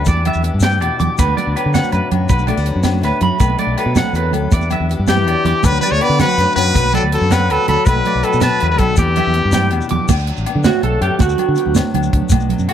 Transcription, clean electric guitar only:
0.08 0.23 D5 medium
0.27 0.41 E5 medium
0.63 0.78 G5 medium
0.81 0.96 D5 medium
1.00 1.15 D6 medium
1.19 1.34 B4 medium
1.37 1.52 D5 medium
1.56 1.71 B4 medium
1.74 1.89 F#5 medium
1.92 2.08 B4 medium
2.29 2.45 B4 medium
2.48 2.63 D5 medium
3.05 3.19 B4 medium
3.23 3.38 B5 medium
3.40 3.56 B4 medium
3.59 3.74 D5 medium
3.78 3.93 B4 medium
3.97 4.12 F#5 medium
4.16 4.31 B4 medium
4.53 4.68 D5 medium
4.72 4.87 E5 medium
5.09 5.24 G5 medium
5.28 5.42 D5 medium
5.46 5.61 D6 medium
5.64 muted clean electric guitar stroke medium
5.83 5.98 D5 medium
6.02 6.17 B4 medium
6.20 6.35 F#5 medium
6.39 6.54 B4 medium
6.75 6.90 B4 medium
6.95 7.09 D5 medium
7.31 7.46 F#5 medium
7.50 7.65 B4 medium
7.69 7.83 B5 medium
7.87 8.02 B4 medium
8.07 8.21 D5 medium
8.25 8.39 B4 medium
8.43 8.58 A5 medium
8.61 8.76 B4 medium
8.98 9.13 D5 medium
9.17 9.32 E5 medium
9.54 9.69 G5 medium
9.91 10.06 D6 medium
10.47 muted clean electric guitar stroke medium
10.65 10.83 F#4 medium
10.84 11.02 A4 medium
11.02 11.20 G4 medium
11.21 11.72 F#4 medium
12.69 12.73 F#4 medium

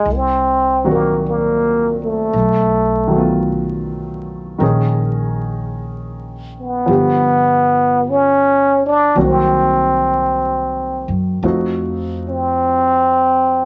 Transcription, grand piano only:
0.84 2.34 A#2 soft
0.84 2.33 D#3 soft
0.84 2.34 F#3 medium
0.84 2.34 C4 medium
0.84 2.34 F#4 medium
3.07 4.57 D#3 soft
3.07 4.60 F#3 soft
3.12 4.61 A3 soft
3.12 4.63 B3 soft
3.18 4.64 F4 medium
4.58 6.87 D#3 medium
4.58 6.89 C#4 soft
4.58 6.88 D#4 soft
4.58 6.88 A#4 soft
4.63 6.90 G#4 medium
6.86 9.16 D3 soft
6.86 9.15 F3 medium
6.86 9.15 G3 soft
6.86 9.16 B3 soft
6.91 9.17 G4 medium
9.16 11.43 D#3 medium
9.16 11.43 F#3 soft
9.16 11.44 A#3 soft
9.16 11.43 C4 soft
9.16 11.44 F#4 medium
11.43 13.65 F3 soft
11.43 13.65 A3 soft
11.43 13.65 C4 soft
11.43 13.65 D#4 soft
11.43 13.65 F#4 medium

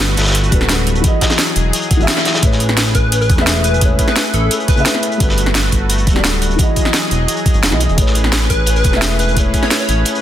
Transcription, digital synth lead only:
2.95 3.19 B4 medium
3.21 3.42 B4 medium
3.64 3.85 B4 loud
4.08 4.32 B4 loud
4.34 4.55 A4 medium
4.69 4.95 B4 loud
8.50 8.74 B4 medium
8.76 8.97 B4 loud
9.19 9.40 B4 loud
9.63 9.78 C#5 medium
9.80 10.01 C#5 loud

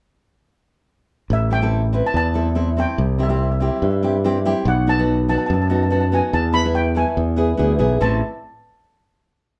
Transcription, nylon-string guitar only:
1.50 1.57 C4 medium
1.50 1.58 E4 medium
1.50 1.58 A4 medium
1.62 1.81 C4 medium
1.62 1.81 E4 medium
1.62 1.81 A4 medium
1.93 2.18 C4 medium
1.93 2.19 E4 soft
1.93 2.19 B4 medium
2.34 2.47 C4 medium
2.34 2.48 E4 medium
2.34 2.48 A4 medium
2.55 2.68 C4 medium
2.55 2.69 E4 medium
2.55 2.69 A4 medium
2.77 2.98 C4 medium
2.77 2.98 E4 medium
2.77 2.99 A4 medium
3.18 3.25 C4 medium
3.18 3.26 E4 medium
3.18 3.26 G4 medium
3.29 3.48 C4 medium
3.29 3.49 E4 medium
3.29 3.49 G4 medium
3.60 3.86 C4 medium
3.60 3.86 E4 medium
3.60 3.87 G4 medium
4.03 4.16 C4 medium
4.03 4.16 E4 medium
4.03 4.16 G4 medium
4.24 4.37 C4 medium
4.24 4.37 E4 medium
4.24 4.37 G4 medium
4.45 4.66 C4 medium
4.45 4.66 E4 medium
4.45 4.67 G4 medium
4.87 4.93 B3 medium
4.87 4.94 D#4 medium
4.87 4.94 F#4 medium
4.98 5.17 B3 medium
4.98 5.17 D#4 medium
4.98 5.17 F#4 medium
5.29 5.54 B3 medium
5.29 5.54 D#4 medium
5.29 5.55 F#4 medium
5.70 5.83 B3 medium
5.70 5.83 D#4 medium
5.70 5.84 F#4 medium
5.90 6.04 B3 medium
5.90 6.04 D#4 medium
5.90 6.04 F#4 medium
6.12 6.33 B3 medium
6.12 6.33 D#4 medium
6.12 6.34 F#4 medium
6.53 6.60 B3 medium
6.53 6.61 E4 medium
6.53 6.61 A4 medium
6.64 6.84 B3 medium
6.64 6.84 E4 medium
6.64 6.84 A4 medium
6.95 7.17 B3 medium
6.95 7.17 E4 medium
6.95 7.17 A4 medium
7.36 7.50 B3 medium
7.36 7.50 E4 medium
7.36 7.51 G#4 medium
7.57 7.71 B3 medium
7.57 7.71 E4 medium
7.57 7.72 G#4 medium
7.79 8.00 B3 medium
7.79 7.99 E4 medium
7.79 8.01 G#4 medium
8.00 8.20 C4 medium
8.00 8.20 E4 medium
8.00 8.20 A4 medium

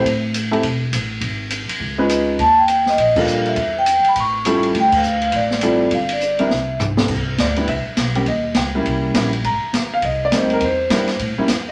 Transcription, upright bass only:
0.05 0.61 A1 medium
0.63 0.90 E1 medium
0.92 1.19 A1 medium
1.21 1.65 G#1 medium
1.68 muted upright bass stroke soft
1.80 2.36 C#2 medium
2.39 2.95 D#2 medium
2.97 3.53 A#1 medium
3.56 4.00 E2 medium
4.04 muted upright bass stroke soft
4.15 4.71 A1 medium
4.74 5.30 D2 medium
5.33 5.88 A1 medium
5.91 6.47 G1 medium
6.50 7.06 C2 medium
7.08 7.37 C2 medium
7.38 7.66 D2 medium
7.67 7.84 C2 medium
7.85 muted upright bass stroke soft
7.97 8.25 B1 medium
8.26 8.54 D#2 medium
8.55 8.84 C#2 medium
8.85 9.13 C2 medium
9.14 9.43 A#1 medium
9.43 9.60 G#1 medium
9.60 muted upright bass stroke soft
9.73 10.01 G1 medium
10.02 10.30 C2 medium
10.31 10.60 D2 medium
10.60 10.89 E2 medium
10.90 11.18 G2 medium
11.19 11.36 A2 medium
11.38 muted upright bass stroke soft
11.48 11.72 E2 medium

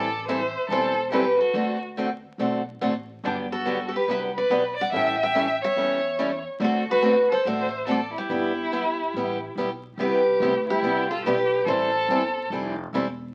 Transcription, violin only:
0.00 0.24 A4 medium
0.28 0.67 C5 medium
0.69 1.09 A4 medium
1.12 1.37 G4 medium
1.38 1.78 F#4 medium
3.25 3.37 D4 medium
3.52 3.84 F#4 medium
3.87 3.93 F#4 soft
3.94 4.07 G4 medium
4.09 4.20 B4 medium
4.35 4.74 B4 medium
4.77 4.91 D5 medium
4.93 5.17 E5 medium
5.20 5.59 E5 medium
5.62 6.42 C#5 medium
6.61 6.86 F#4 medium
6.90 7.28 F#4 medium
7.31 7.44 A4 medium
7.46 7.85 C5 medium
7.88 8.13 A4 medium
8.15 9.52 E4 medium
9.98 10.63 G4 medium
10.68 11.07 E4 medium
11.09 11.23 F4 medium
11.25 11.64 G4 medium
11.67 12.47 A4 medium

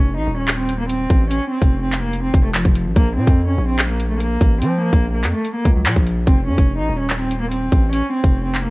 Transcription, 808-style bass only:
0.00 0.19 F1 loud
0.17 0.27 A1 loud
0.27 1.07 D#1 loud
1.10 1.40 A1 loud
1.62 2.31 F1 loud
2.34 2.64 F1 loud
2.65 2.87 F1 loud
2.86 2.96 A1 loud
2.96 3.18 A#1 loud
3.17 3.27 A#2 loud
3.27 3.57 F2 loud
3.58 4.38 A#1 loud
4.41 4.63 A1 loud
4.62 4.91 F3 loud
4.93 5.25 A#1 loud
5.24 5.34 F2 loud
5.65 5.87 C#2 loud
5.86 5.96 A#2 loud
5.96 6.26 A#1 loud
6.27 6.49 F1 loud
6.48 6.58 F2 loud
6.58 6.80 F1 loud
6.79 6.89 A1 loud
6.89 7.69 D#1 loud
7.72 8.02 A1 loud
8.24 8.70 F1 loud

